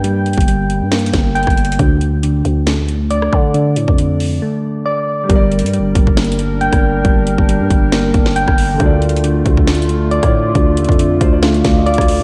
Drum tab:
HH |x-----x-x-x-x-----x-----x-x-x-x-----x-x-x-x-x-x-|x-----x-----x-----x-----x-----x-----x-----------|x-----x-----x-----o-----------------------------|x-----x-x-x-x-----x-----x-x-x-x-----x--x--------|
SD |------------------------o-----o--------r--------|------------------------o--------------r--------|------------------------------------------------|------------------------o--------------r--------|
BD |---------o--------------------o--------o--------|o-----------------------------------------o-----|---------o--------------------------------------|o-----------------o--o-----------------o--------|

HH |x-----x-----x-----x-----x-----x-----x-----o-----|x-----x-x-x-x-----x-----x-x-x-x-----x--x--------|x-----x-x-x-x-----x-----x--x--x-----x-x-x-o-----|
SD |------------------------o--------o-----r--------|------------------------o--------------r--------|------------------------o-----o--------r--------|
BD |o--------o--------o-----------o--------o--------|o-----------------o--o-----------------o--------|o--------o--------o-----------o--------o--------|